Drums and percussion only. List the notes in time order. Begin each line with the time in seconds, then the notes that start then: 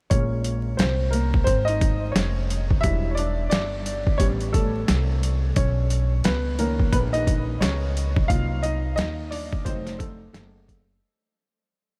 0.11 kick, closed hi-hat
0.44 closed hi-hat
0.79 snare, closed hi-hat
1.13 closed hi-hat
1.34 kick
1.47 kick, closed hi-hat
1.68 closed hi-hat
1.81 kick, closed hi-hat
2.16 snare, closed hi-hat
2.50 closed hi-hat
2.71 kick
2.83 kick, closed hi-hat
3.17 closed hi-hat
3.51 snare, closed hi-hat
3.86 closed hi-hat
4.07 kick
4.20 kick, closed hi-hat
4.40 closed hi-hat
4.54 kick, closed hi-hat
4.88 snare, closed hi-hat
5.23 closed hi-hat
5.56 kick, closed hi-hat
5.90 closed hi-hat
6.24 snare, closed hi-hat
6.59 closed hi-hat
6.80 kick
6.93 kick, closed hi-hat
7.14 closed hi-hat
7.27 kick, closed hi-hat
7.62 snare, closed hi-hat
7.97 closed hi-hat
8.16 kick
8.30 kick, closed hi-hat
8.64 closed hi-hat
8.98 snare, closed hi-hat
9.32 open hi-hat
9.53 kick
9.66 kick, closed hi-hat
9.87 snare, closed hi-hat
10.00 kick, closed hi-hat
10.34 snare, closed hi-hat
10.69 kick, closed hi-hat